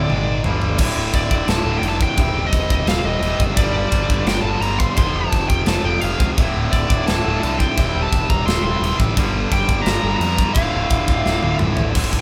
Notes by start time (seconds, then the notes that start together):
Already playing: D5
0.09 G#1 G#2 D#3 G#3, mid tom
0.44 G1 G2 D3 G3, floor tom
0.62 floor tom
0.78 D1 D2 A2 D3, kick, crash
0.96 D1
1.14 D1 D5, kick, crash
1.31 D1, kick
1.47 D1 A5, snare, crash
1.65 D1 D2 A2 D3
1.79 F1 G5
1.83 D2 A2 D3, crash
1.88 A5
2.01 G5, kick
2.17 D#1 C3 G3 C4, kick, crash
2.34 D#1
2.47 D#5
2.52 D#1, kick, crash
2.70 D#1 D#5, kick
2.86 D#1 F5, snare, crash
3.03 D#1 G3 C4 D#5
3.08 C3
3.21 D#1 C3 G3, crash
3.26 C4
3.40 F#1, kick
3.57 G1 G2 D3 D5, kick, crash
3.61 G3
3.73 G1
3.92 G1, kick, crash
4.09 G1, kick
4.26 G1 G5, snare, crash
4.41 G1 G3 A5
4.46 G2 D3
4.60 G1 G2 D3 A#5, crash
4.65 G3
4.79 C6, kick
4.97 F1 F2 C3 F3 C6, kick, crash
5.14 F1 A5
5.32 F1, kick, crash
5.49 F1 G5, kick
5.66 F1 A5, snare, crash
5.84 F1 F2 C3 F3 G5
6.01 F1 F2 C3 F3 F5, crash
6.20 C#2, kick
6.36 D1 D2 A2 D3, kick, crash
6.55 D1
6.72 D1 D5, kick, crash
6.90 D1, kick
7.07 D1 A5, snare, crash
7.24 D1 D2 A2 D3
7.41 C2 D2 A2 A5, crash
7.45 D3
7.59 G5, kick
7.77 D#1 C3 G3 C4, kick, crash
7.95 D#1
8.02 A5
8.12 D#1, kick, crash
8.30 D#1 A#5, kick
8.45 D#1 C6, snare, crash
8.63 D#1 C4 C6
8.67 C3 G3
8.80 D#1 C3, crash
8.84 G3 C4
9.00 A1, kick
9.17 G1 G2 D3 G3, kick, crash
9.33 G1
9.52 G1 G5, kick, crash
9.69 G1, kick
9.82 G1 A#5
9.86 snare, crash
10.03 G1 G2 D3 G3
10.17 F2 A#5
10.21 G2 D3 G3, crash
10.39 kick
10.53 D1 D2 A2 F5, kick, crash
10.58 D3
10.74 D1
10.90 D1, kick, crash
11.08 D1, kick
11.26 D1, snare
11.42 D1 D2 A2 D3, high tom
11.59 D1 D2 A2 D3, mid tom
11.77 A1, floor tom
11.94 D1 D2 A2 D3, kick, crash
12.04 kick
12.11 D1 D2 A2, kick, crash